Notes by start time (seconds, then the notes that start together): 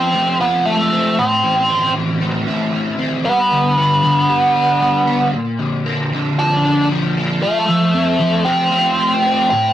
Already playing: F3 C4
0.14 A3
0.40 B3 F4
0.65 A3
0.92 C4
1.18 A2 C4
1.44 E3
1.70 C4
1.95 E3
2.21 A3
2.47 E4
2.73 A3
2.99 C4
3.24 G2 B3
3.52 D3
3.77 B3
4.03 D3
4.30 G3
4.56 D4
4.81 G3
5.07 B3
5.34 A#2
5.59 D3
5.86 A#3
6.13 D3
6.38 F3 D4
6.65 D4
6.91 F3
7.17 A#3
7.42 F3 A3
7.69 F3
7.95 C4
8.20 F3
8.45 A3 C4
8.71 F4
8.98 A3
9.25 C4
9.50 A2 C4